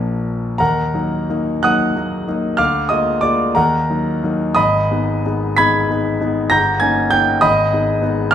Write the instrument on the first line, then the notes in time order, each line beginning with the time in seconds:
grand piano
Already playing: A#1 F3 A#3 D4
0.58 D#2 A#4 F#5 A#5
0.94 F#3 A#3 D#4
1.29 F#3 A#3 D#4
1.63 F#3 A#3 D#4 F#5 D#6 F#6
1.96 F#3 A#3 D#4
2.28 F#3 A#3 D#4
2.57 D2 F5 D6 F6
2.89 G#3 A#3 F4 D#5 D#6
3.21 G#3 A#3 F4 D5 D6
3.55 D#2 A#4 F#5 A#5
3.89 F#3 A#3 D#4
4.23 F#3 A#3 D#4
4.55 G#1 D#5 B5 D#6
4.91 G#3 B3 D#4
5.25 G#3 B3 D#4
5.57 G#3 B3 D#4 B5 G#6 B6
5.90 G#3 B3 D#4
6.21 G#3 B3 D#4
6.50 G1 A#5 G6 A#6
6.80 A#3 C#4 D#4 G#5 G#6
7.11 A#3 C#4 D#4 G5 G6
7.41 G#1 D#5 B5 D#6
7.73 G#3 B3 D#4
8.01 G#3 B3 D#4
8.31 F6